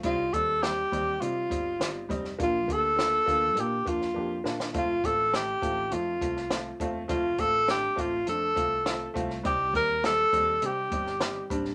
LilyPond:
<<
  \new Staff \with { instrumentName = "Tenor saxophone" } { \time 4/4 \key f \mixolydian \tempo 4 = 102 f'8 a'8 g'4 f'4. r8 | f'8 a'4. g'8 f'4 r8 | f'8 a'8 g'4 f'4. r8 | f'8 a'8 g'8 f'8 a'4. r8 |
g'8 bes'8 a'4 g'4. r8 | }
  \new Staff \with { instrumentName = "Upright piano" } { \time 4/4 \key f \mixolydian <g c' ees'>8 <g c' ees'>8 <g c' ees'>8 <g c' ees'>8 <g c' ees'>8 <g c' ees'>8 <g c' ees'>8 <g c' ees'>8 | <bes d' f'>8 <bes d' g'>8 <bes d' f'>8 <bes d' f'>8 <bes d' f'>8 <bes d' f'>8 <bes d' g'>8 <bes d' f'>8 | <a c' f'>8 <a c' f'>8 <a c' ees'>8 <a c' f'>8 <a c' ees'>8 <a c' f'>8 <a c' f'>8 <a c' f'>8 | <a c' f'>8 <a c' f'>8 <a c' d'>8 <a c' f'>8 <a c' d'>8 <a c' f'>8 <a c' f'>8 <a c' f'>8 |
<g c' ees'>8 <g c' ees'>8 <g c' ees'>8 <g c' ees'>8 <g c' ees'>8 <g c' ees'>8 <g c' ees'>8 <g c' d'>8 | }
  \new Staff \with { instrumentName = "Fretless electric bass" } { \clef bass \time 4/4 \key f \mixolydian c,8 ees,4 ees,8 c8 g,,8 g,,8 f,,8 | bes,,8 d,4 d,8 bes,8 f,8 f,8 bes,8 | f,,8 a,,4 a,,8 f,8 c,4 e,,8 | f,,8 a,,4 a,,8 f,8 c,4 c,8 |
c,8 ees,4 ees,8 c8 g,,4 a,,8 | }
  \new DrumStaff \with { instrumentName = "Drums" } \drummode { \time 4/4 <hh bd>8 <hh bd>8 <hh sn>8 <hh bd>8 hh8 <hh bd>8 <hh sn>8 <hh bd>16 sn16 | <hh bd>8 <hh bd>8 <hh sn>8 <hh bd>8 hh8 <hh bd>16 sn16 r8 sn16 sn16 | <hh bd>8 <hh bd>8 <hh sn>8 <hh bd>8 hh8 <hh bd>16 sn16 <hh sn>8 <hh bd>8 | <hh bd>8 <hh bd>8 <hh sn>8 <hh bd>8 hh8 <hh bd>8 <hh sn>8 <hh bd>16 sn16 |
<hh bd>8 <hh bd>8 <hh sn>8 <hh bd>8 hh8 <hh bd>16 sn16 <hh sn>8 <hh bd>16 sn16 | }
>>